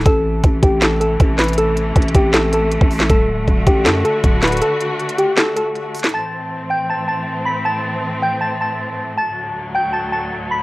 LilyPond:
<<
  \new Staff \with { instrumentName = "Synth bell" } { \time 4/4 \key a \dorian \tempo 4 = 158 <a' a''>4 r8 <g' g''>8 <a' a''>8 <a' a''>4 <b' b''>8 | <a' a''>4 r8 <g' g''>8 <a' a''>8 <a' a''>4. | <a' a''>4 r8 <g' g''>8 <a' a''>8 <a' a''>4 <b' b''>8 | <a' a''>4 r8 <g' g''>8 <a' a''>8 <a' a''>4. |
<a'' a'''>4 r8 <g'' g'''>8 <a'' a'''>8 <a'' a'''>4 <b'' b'''>8 | <a'' a'''>4 r8 <g'' g'''>8 <a'' a'''>8 <a'' a'''>4. | <a'' a'''>4 r8 <g'' g'''>8 <a'' a'''>8 <a'' a'''>4 <b'' b'''>8 | }
  \new Staff \with { instrumentName = "String section" } { \clef bass \time 4/4 \key a \dorian <c e a>1~ | <c e a>1 | <d fis'>1~ | <d fis'>1 |
<a, e c'>1~ | <a, e c'>1 | <d, fis>1 | }
  \new Staff \with { instrumentName = "808-style bass" } { \clef bass \time 4/4 \key a \dorian a,,4 a,,8 a,,4. a,,4~ | a,,4 a,,8 a,,4.~ a,,16 a,,8. | d,,4 d,,8 a,,8 fis,8 r8 d,,4 | r1 |
r1 | r1 | r1 | }
  \new DrumStaff \with { instrumentName = "Drums" } \drummode { \time 4/4 <hh bd>4 <hh bd>8 <hh bd>8 <hc hh sn>8 hh8 <hh bd>8 <hc hh sn>32 hh32 hh32 hh32 | hh8 hh8 \tuplet 3/2 { <hh bd>16 hh16 hh16 <hh bd>16 r16 r16 } <hc hh sn>8 hh8 hh16 bd16 hho16 <hc sn>16 | <hh bd>4 <hh bd>8 <hh bd>8 <hc hh sn>8 hh8 <hh bd>8 <hc hh sn>32 hh32 hh32 hh32 | hh8 hh8 hh16 hh16 hh8 <hc hh sn>8 hh8 hh8 <hh hho>32 hh32 <hc hh sn>32 hh32 |
r4 r4 r4 r4 | r4 r4 r4 r4 | r4 r4 r4 r4 | }
>>